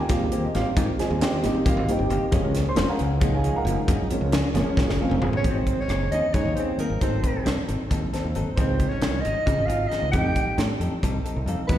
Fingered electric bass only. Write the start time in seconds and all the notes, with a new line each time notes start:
Already playing: D#2
0.44 muted fingered electric bass stroke
0.55 G#1
0.77 G#2
1.00 muted fingered electric bass stroke
1.11 D#2
1.44 G#1
1.54 muted fingered electric bass stroke
1.66 C2
1.77 G#1
1.99 G1
2.10 G1
2.22 muted fingered electric bass stroke
2.33 F#1
2.45 C#2
2.77 F1
3.01 C#2
3.55 muted fingered electric bass stroke
3.65 F#1
3.88 F#2
4.10 muted fingered electric bass stroke
4.21 C#2
4.54 F#1
4.77 C2
4.86 F#1
5.09 F1
5.21 F1
5.33 muted fingered electric bass stroke
5.45 G#1
5.77 muted fingered electric bass stroke
5.88 F#1
6.11 D#2
6.34 G#2
6.45 D#2
6.78 muted fingered electric bass stroke
6.90 G#1
7.01 G#1
7.36 muted fingered electric bass stroke
7.47 C2
7.59 muted fingered electric bass stroke
7.69 G#1
7.91 D#2
8.14 muted fingered electric bass stroke
8.24 D#2
8.36 G#1
8.47 muted fingered electric bass stroke
8.58 C#2
8.92 muted fingered electric bass stroke
9.03 C2
9.25 G#1
9.47 C#3
9.58 G#1
9.93 muted fingered electric bass stroke
10.02 C#2
10.13 F2
10.47 muted fingered electric bass stroke
10.58 A2
10.69 muted fingered electric bass stroke
10.80 F2
10.92 muted fingered electric bass stroke
11.03 C2
11.26 muted fingered electric bass stroke
11.37 C2
11.46 F2
11.59 muted fingered electric bass stroke
11.69 E2